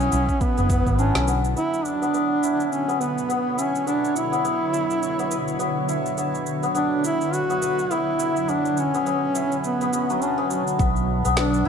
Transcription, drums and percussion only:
0.00 cabasa soft
0.12 cabasa medium
0.29 kick medium
0.29 cabasa soft
0.41 kick loud
0.41 cabasa soft
0.58 cabasa soft
0.70 kick loud
0.70 cabasa medium
0.87 kick medium
0.87 cabasa soft
0.99 cabasa soft
1.15 snare medium
1.15 cabasa soft
1.28 cabasa medium
1.44 cabasa soft
1.57 cabasa soft
1.74 cabasa soft
1.85 cabasa medium
2.03 cabasa soft
2.14 cabasa soft
2.43 cabasa medium
2.60 cabasa soft
2.72 cabasa soft
2.89 cabasa soft
3.01 cabasa medium
3.18 cabasa soft
3.30 cabasa soft
3.58 cabasa medium
3.75 cabasa soft
3.87 cabasa soft
4.05 cabasa soft
4.16 cabasa medium
4.33 cabasa soft
4.45 cabasa soft
4.74 cabasa medium
4.90 cabasa soft
5.03 cabasa soft
5.19 cabasa soft
5.31 cabasa medium
5.48 cabasa soft
5.60 cabasa soft
5.89 cabasa medium
6.06 cabasa soft
6.18 cabasa soft
6.35 cabasa soft
6.46 cabasa medium
6.63 cabasa soft
6.75 cabasa soft
7.04 cabasa medium
7.21 cabasa soft
7.33 cabasa soft
7.50 cabasa soft
7.62 cabasa medium
7.79 cabasa soft
7.91 cabasa soft
8.19 cabasa medium
8.36 cabasa soft
8.49 cabasa soft
8.65 cabasa soft
8.77 cabasa medium
8.94 cabasa soft
9.06 cabasa soft
9.35 cabasa medium
9.52 cabasa soft
9.64 cabasa soft
9.81 cabasa soft
9.93 cabasa medium
10.10 cabasa soft
10.22 cabasa soft
10.51 cabasa medium
10.67 cabasa soft
10.79 kick loud
10.79 cabasa medium
10.96 cabasa soft
11.25 cabasa medium
11.37 snare loud
11.37 cabasa medium
11.54 cabasa soft

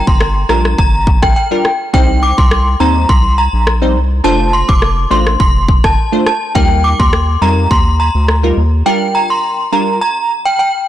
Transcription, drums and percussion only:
0.07 kick medium
0.21 cross-stick loud
0.49 cross-stick medium
0.65 cross-stick medium
0.78 kick medium
1.07 kick medium
1.23 kick medium
1.23 cross-stick medium
1.65 cross-stick medium
1.94 kick loud
2.38 kick medium
2.51 cross-stick loud
3.09 kick loud
3.67 cross-stick medium
4.69 kick medium
4.82 cross-stick medium
5.27 cross-stick medium
5.40 kick loud
5.68 kick medium
5.84 kick medium
5.84 cross-stick medium
6.26 cross-stick medium
6.55 kick loud
7.00 kick medium
7.13 cross-stick loud
7.71 kick medium
8.28 cross-stick medium

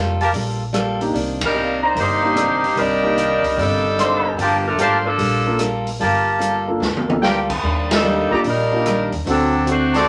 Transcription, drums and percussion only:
0.21 open hi-hat soft
0.34 kick soft
0.34 open hi-hat soft
0.74 cross-stick medium
0.74 closed hi-hat soft
1.01 open hi-hat soft
1.15 kick soft
1.15 open hi-hat soft
1.41 kick medium
1.41 ride medium
1.96 kick soft
1.96 open hi-hat soft
2.36 cross-stick medium
2.36 closed hi-hat medium
2.64 open hi-hat soft
2.77 kick soft
2.77 open hi-hat soft
3.18 closed hi-hat soft
3.44 open hi-hat soft
3.58 kick soft
3.58 open hi-hat soft
3.99 cross-stick medium
3.99 closed hi-hat medium
4.39 kick soft
4.39 open hi-hat soft
4.79 closed hi-hat soft
5.19 kick soft
5.19 open hi-hat soft
5.59 cross-stick medium
5.59 closed hi-hat soft
5.87 open hi-hat soft
6.01 kick soft
6.01 open hi-hat soft
6.41 closed hi-hat soft
6.82 snare soft
6.97 high tom medium
7.10 high tom medium
7.23 snare medium
7.50 kick medium
7.50 crash medium
7.64 kick soft
7.91 snare medium
7.91 ride medium
8.31 kick soft
8.44 kick soft
8.44 open hi-hat soft
8.86 cross-stick medium
8.86 closed hi-hat soft
9.12 open hi-hat soft
9.27 kick soft
9.27 open hi-hat soft
9.67 closed hi-hat soft
9.94 snare soft
9.94 open hi-hat soft

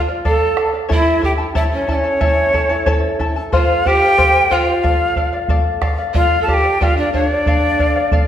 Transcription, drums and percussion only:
0.25 bombo low medium
0.57 bombo rim medium
0.90 bombo low medium
1.23 bombo low medium
1.55 bombo low medium
1.88 bombo low medium
2.21 bombo low medium
2.54 bombo low medium
2.86 bombo low medium
3.20 bombo low medium
3.53 bombo low medium
3.86 bombo low medium
4.18 bombo low medium
4.51 bombo low medium
4.84 bombo low medium
5.16 bombo low medium
5.48 bombo low medium
5.82 bombo rim medium
5.82 bombo low medium
6.15 bombo low medium
6.48 bombo low medium
6.81 bombo low medium
7.14 bombo low medium
7.46 bombo low medium
7.79 bombo low medium
8.12 bombo low medium

